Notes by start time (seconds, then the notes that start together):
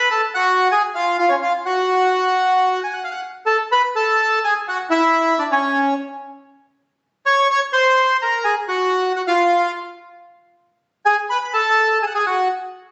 0.10 A4 A5
0.34 F#4 F#5
0.71 G#4 G#5
0.95 F4 F5
1.18 F4 F5
1.29 C#4 C#5
1.42 F4 F5
1.66 F#4 F#5
2.84 G#5
2.93 F#5
3.04 F5
3.11 F#5
3.46 A4 A5
3.72 B4 B5
3.96 A4 A5
4.44 G#4 G#5
4.68 F#4 F#5
4.90 E4 E5
5.39 D4 D5
5.51 C#4 C#5
7.26 C#5 C#6
7.50 C#5 C#6
7.73 C5 C6
8.22 A#4 A#5
8.44 G#4 G#5
8.68 F#4 F#5
9.16 F#4 F#5
9.27 F4 F5
11.05 G#4 G#5
11.30 B4 B5
11.45 B5
11.54 A4 A5
12.02 G#4 G#5
12.07 F#5
12.15 G#4 G#5
12.27 F#4 F#5